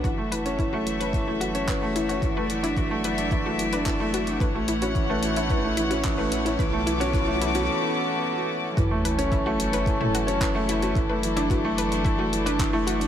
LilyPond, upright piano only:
\new Staff \with { instrumentName = "Upright piano" } { \clef bass \time 4/4 \key fis \minor \tempo 4 = 110 e16 a16 e16 cis'16 e16 a16 e16 cis'16 e16 a16 e16 cis'16 e16 a16 e16 cis'16 | e16 a16 e16 d'16 e16 a16 e16 d'16 e16 a16 e16 d'16 e16 a16 e16 d'16 | e16 a16 e16 cis'16 e16 a16 e16 cis'16 e16 a16 e16 cis'16 e16 a16 e16 cis'16 | e16 a16 e16 cis'16 e16 a16 e16 cis'16 r2 |
e16 a16 e16 cis'16 e16 a16 e16 cis'16 e16 a16 e16 cis'16 e16 a16 e16 cis'16 | e16 a16 e16 d'16 e16 a16 e16 d'16 e16 a16 e16 d'16 e16 a16 e16 d'16 | }